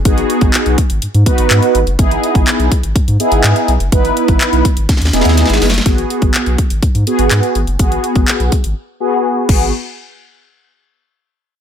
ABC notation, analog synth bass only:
X:1
M:4/4
L:1/16
Q:1/4=124
K:G#m
V:1 name="Analog synth bass" clef=bass
G,,,2 z G,,, z B,,, z G,,, G,, G,, z G,,, G,, z G,,, F,,, | G,,,2 z G,,, z B,,, z G,,, G,, G,, z G,,, G,, z B,,, F,,, | G,,,2 z G,,, z B,,, z G,,, z D,, E,,, D,,2 G,,, F,,,2 | G,,,2 z G,,, z B,,, z G,,, G,, G,, z G,,, G,, z G,,, F,,, |
G,,,2 z G,,, z B,,, z G,,, z6 G,,,2 | z16 |]